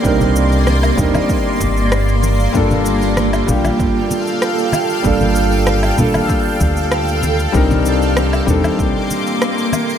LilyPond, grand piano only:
\new Staff \with { instrumentName = "Grand piano" } { \time 4/4 \key g \minor \tempo 4 = 96 <g c' d' ees' bes'>4. <g c' d' ees' bes'>2~ <g c' d' ees' bes'>8 | <g bes d' f' a'>4. <g bes d' f' g'>2~ <g bes d' f' g'>8 | <g bes d' f' a'>4. <g bes d' f' a'>2~ <g bes d' f' a'>8 | <g c' d' ees' bes'>4. <g c' d' ees' a'>2~ <g c' d' ees' a'>8 | }